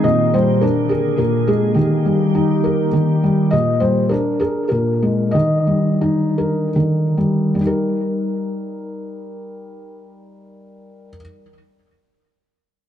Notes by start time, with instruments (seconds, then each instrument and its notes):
Already playing: ambient pad D#3
0.04 felt piano A#2 D#5
0.34 felt piano G3 C5
0.61 ambient pad D3 A#3 G#4, felt piano D4 A#4
0.89 felt piano G#4 A#4
1.18 felt piano A#2 A#4
1.47 felt piano G#3 G#4
1.74 ambient pad D#3 G4, felt piano D#3 G4
2.05 felt piano G3
2.35 felt piano D#4
2.64 felt piano A#4
2.93 felt piano D#3
3.24 felt piano G3
3.51 felt piano A#2 D#5
3.80 felt piano G3 C5
4.09 felt piano D4 A#4
4.39 felt piano G#4 A#4
4.69 felt piano A#2 A#4
5.02 felt piano G#3
5.31 felt piano D#3 D#5
5.67 felt piano G3
6.01 felt piano D#4
6.38 felt piano A#4
6.76 felt piano D#3
7.17 felt piano G3
7.55 felt piano G3
7.61 felt piano D#4
7.67 felt piano A#4